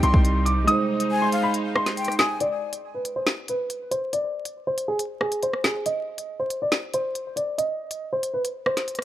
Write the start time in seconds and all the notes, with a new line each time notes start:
Already playing: C3 G3 D#4 G5
0.03 C2 C6, closed hi-hat
0.14 C2, kick
0.25 closed hi-hat
0.45 D6, closed hi-hat
0.57 B1
0.64 G#3 D#4 C5 D#6, closed hi-hat
0.71 C5
1.00 closed hi-hat
1.11 G#5
1.22 C6
1.32 F5, closed hi-hat
1.43 B5
1.54 closed hi-hat
1.76 C6, cross-stick
1.86 snare, closed hi-hat
1.97 G5, closed hi-hat
2.04 cross-stick, closed hi-hat
2.12 closed hi-hat
2.19 G#5 D#6, snare, closed hi-hat
2.40 D5, closed hi-hat
2.73 closed hi-hat
2.94 B4
3.05 closed hi-hat
3.16 C5
3.27 snare, closed hi-hat
3.48 B4, closed hi-hat
3.70 closed hi-hat
3.91 C5, closed hi-hat
4.13 D5, closed hi-hat
4.45 closed hi-hat
4.67 C5
4.78 closed hi-hat
4.88 G#4
4.99 closed hi-hat
5.21 G#4, cross-stick
5.32 closed hi-hat
5.43 C5, closed hi-hat
5.53 cross-stick
5.64 G#4, snare, closed hi-hat
5.86 D#5, closed hi-hat
6.18 closed hi-hat
6.40 C5
6.50 closed hi-hat
6.62 D5
6.72 snare, closed hi-hat
6.94 C5, closed hi-hat
7.15 closed hi-hat
7.36 D5, closed hi-hat
7.58 D#5, closed hi-hat
7.91 closed hi-hat
8.13 C5
8.23 closed hi-hat
8.34 B4
8.45 closed hi-hat
8.66 C5, cross-stick
8.77 snare, closed hi-hat
8.88 closed hi-hat
8.95 cross-stick, closed hi-hat